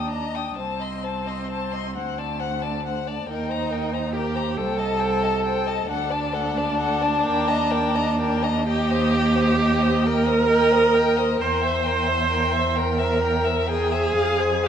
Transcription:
Already playing: cello D#2, viola D4, violin G5
0.10 violin D#5 A#5
0.35 violin G5 D#6
0.56 cello C2, viola C4, violin C5 A5
0.80 violin D#5 C6
1.03 violin C5 A5
1.26 violin D#5 C6
1.50 violin C5 A5
1.72 violin D#5 C6
1.94 cello D2, violin C5 F#5
2.18 violin D5 A5
2.40 violin C5 F#5
2.62 violin D5 A5
2.85 violin C5 F#5
3.07 violin D5 A5
3.27 cello D#2, viola D#4, violin A#4 G5
3.49 violin C5 A#5
3.70 violin A#4 G5
3.92 violin C5 A#5
4.13 viola G4, violin A#4 G5
4.35 violin C5 A#5
4.57 cello C2, viola A4, violin C5 G5
4.78 violin D#5 A5
5.00 violin C5 G5
5.22 violin D#5 A5
5.44 violin C5 G5
5.66 violin D#5 A5
5.88 cello D2, viola D4, violin A4 F#5
6.10 violin D5 A5
6.33 violin A4 F#5
6.57 violin D5 A5
6.79 violin A4 F#5
7.01 violin D5 A5
7.24 cello D#2, violin A#4 G5
7.48 violin D#5 A#5
7.71 violin A#4 G5
7.95 violin D#5 A#5
8.19 violin A#4 G5
8.42 violin D#5 A#5
8.67 viola G4, violin D#5 G5
8.90 violin C5 D#5
9.14 violin D#5 G5
9.35 violin C5 D#5
9.58 violin D#5 G5
9.80 violin C5 D#5
10.04 viola A#4, violin D#5 G5
10.26 violin C5 D#5
10.49 violin D#5 G5
10.71 violin C5 D#5
10.95 violin D#5 G5
11.17 violin C5 D#5
11.40 cello E2, violin A#4 G5, viola C5
11.62 violin C5 E5
11.84 violin A#4 G5
12.06 violin C5 E5
12.30 violin A#4 G5
12.52 violin C5 E5
12.76 violin A#4 G5, viola A#4
12.99 violin C5 E5
13.22 violin A#4 G5
13.45 violin C5 E5
13.68 viola G#4, violin A#4 G5
13.92 violin C5 E5
14.15 cello F2, violin G#4 F5
14.39 violin C5 G#5
14.64 violin G#4 F5

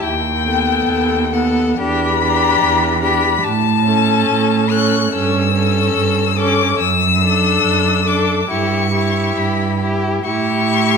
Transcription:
0.03 cello D#2, violin G5
0.44 viola B3, violin A4
0.86 cello D#2
1.32 viola B3, violin A4 F#5
1.78 cello E2, viola D4, violin G4 B5
2.22 viola D4, violin G4
2.62 cello E2
3.02 viola D4, violin G4 B5
3.43 cello A2, violin A5
3.86 viola C#4, violin A4
4.28 cello A2
4.70 viola C#4, violin A4 F#6
5.12 cello G2, viola C#4, violin A4 E6
5.54 viola C#4, violin A4
5.95 cello G2
6.37 viola C#4, violin A4 D6
6.79 cello F#2, violin E6
7.21 viola D4, violin A4
7.64 cello F#2
8.05 viola D4, violin A4 D6
8.49 cello G2, viola E4, violin G4 C#6
8.94 viola E4, violin G4
9.37 cello G2, violin B5
9.80 viola E4, violin G4
10.23 cello A2, viola E4, violin G4 C#6

